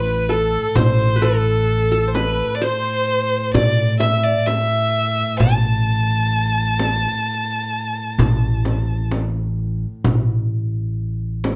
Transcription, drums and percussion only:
0.75 darbuka dum medium
0.75 frame drum medium
2.15 darbuka tek medium
2.15 frame drum medium
3.54 darbuka dum medium
3.54 frame drum medium
4.00 darbuka tek medium
4.00 frame drum medium
4.46 darbuka tek medium
4.46 frame drum medium
4.94 darbuka ka soft
5.40 frame drum medium
5.40 darbuka dum loud
6.34 darbuka ka soft
6.79 darbuka tek medium
6.79 frame drum medium
7.26 darbuka ka soft
7.73 darbuka ka soft
7.96 darbuka ka soft
8.19 darbuka dum medium
8.19 frame drum medium
8.65 darbuka tek medium
8.65 frame drum medium
9.11 darbuka tek medium
9.11 frame drum medium
9.59 darbuka ka soft
10.04 frame drum medium
10.04 darbuka dum medium
11.44 darbuka tek medium
11.44 frame drum medium

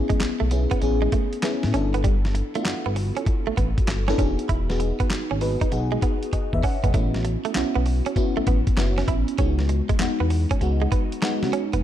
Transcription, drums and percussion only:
0.10 kick medium
0.10 closed hi-hat medium
0.20 snare loud
0.20 clap loud
0.20 closed hi-hat medium
0.51 closed hi-hat medium
0.71 kick medium
0.71 closed hi-hat medium
0.82 closed hi-hat medium
1.12 kick medium
1.12 closed hi-hat medium
1.33 closed hi-hat medium
1.43 snare loud
1.43 clap medium
1.43 closed hi-hat medium
1.63 snare medium
1.74 closed hi-hat medium
1.94 closed hi-hat medium
2.04 kick loud
2.04 closed hi-hat medium
2.25 snare medium
2.35 closed hi-hat medium
2.55 closed hi-hat medium
2.65 snare loud
2.65 clap loud
2.65 closed hi-hat medium
2.96 open hi-hat medium
3.17 closed hi-hat medium
3.26 kick loud
3.26 closed hi-hat medium
3.57 kick medium
3.57 closed hi-hat medium
3.78 kick medium
3.78 closed hi-hat soft
3.88 snare loud
3.88 clap medium
3.88 closed hi-hat medium
4.08 snare medium
4.18 kick medium
4.18 closed hi-hat medium
4.39 closed hi-hat medium
4.49 kick loud
4.49 closed hi-hat medium
4.70 snare medium
4.80 closed hi-hat medium
5.00 kick medium
5.00 closed hi-hat medium
5.10 snare loud
5.10 clap loud
5.10 closed hi-hat medium
5.41 open hi-hat medium
5.61 kick medium
5.61 closed hi-hat medium
5.72 closed hi-hat medium
6.02 kick medium
6.02 closed hi-hat medium
6.23 closed hi-hat medium
6.33 kick medium
6.33 closed hi-hat medium
6.53 kick medium
6.63 kick medium
6.63 open hi-hat medium
6.84 kick medium
6.84 closed hi-hat medium
6.94 kick loud
6.94 closed hi-hat medium
7.14 snare medium
7.25 closed hi-hat medium
7.45 closed hi-hat medium
7.55 snare loud
7.55 clap loud
7.55 closed hi-hat medium
7.86 open hi-hat medium
8.06 closed hi-hat medium
8.16 kick medium
8.16 closed hi-hat soft
8.47 kick medium
8.47 closed hi-hat medium
8.67 kick loud
8.67 closed hi-hat medium
8.77 snare loud
8.77 clap medium
8.77 closed hi-hat medium
8.98 snare medium
9.08 kick medium
9.08 closed hi-hat medium
9.28 closed hi-hat medium
9.38 kick loud
9.38 closed hi-hat medium
9.59 snare medium
9.69 closed hi-hat medium
9.89 kick medium
9.89 closed hi-hat medium
9.99 snare loud
9.99 clap loud
9.99 closed hi-hat medium
10.30 open hi-hat medium
10.51 kick medium
10.51 closed hi-hat medium
10.61 closed hi-hat medium
10.92 kick loud
10.92 closed hi-hat medium
11.12 closed hi-hat medium
11.22 snare loud
11.22 clap medium
11.22 closed hi-hat medium
11.43 snare medium
11.53 closed hi-hat medium
11.73 closed hi-hat medium

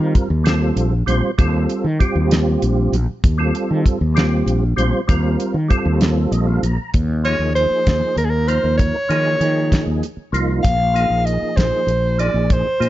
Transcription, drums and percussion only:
0.15 kick medium
0.15 closed hi-hat medium
0.46 snare medium
0.46 closed hi-hat medium
0.77 closed hi-hat medium
1.08 closed hi-hat medium
1.39 kick loud
1.39 closed hi-hat medium
1.69 closed hi-hat medium
2.00 kick medium
2.00 closed hi-hat medium
2.31 snare loud
2.31 closed hi-hat medium
2.62 closed hi-hat medium
2.93 closed hi-hat medium
3.24 kick loud
3.24 closed hi-hat medium
3.55 closed hi-hat medium
3.86 kick medium
3.86 closed hi-hat medium
4.17 snare loud
4.17 closed hi-hat medium
4.48 closed hi-hat medium
4.78 closed hi-hat medium
5.09 kick loud
5.09 closed hi-hat medium
5.40 closed hi-hat medium
5.70 kick medium
5.70 closed hi-hat medium
6.01 snare loud
6.01 closed hi-hat medium
6.32 closed hi-hat medium
6.63 closed hi-hat medium
6.94 kick medium
6.94 closed hi-hat medium
7.25 closed hi-hat soft
7.56 closed hi-hat medium
7.87 kick medium
7.87 snare medium
7.87 closed hi-hat medium
8.17 closed hi-hat medium
8.48 closed hi-hat medium
8.79 kick medium
8.79 closed hi-hat medium
9.10 closed hi-hat medium
9.41 closed hi-hat medium
9.72 kick medium
9.72 snare loud
9.72 closed hi-hat medium
10.03 closed hi-hat medium
10.34 closed hi-hat medium
10.65 kick loud
10.65 closed hi-hat medium
10.96 closed hi-hat medium
11.27 closed hi-hat soft
11.57 kick medium
11.57 snare loud
11.57 closed hi-hat medium
11.88 closed hi-hat soft
12.19 closed hi-hat medium
12.50 kick loud
12.50 closed hi-hat medium
12.82 closed hi-hat medium

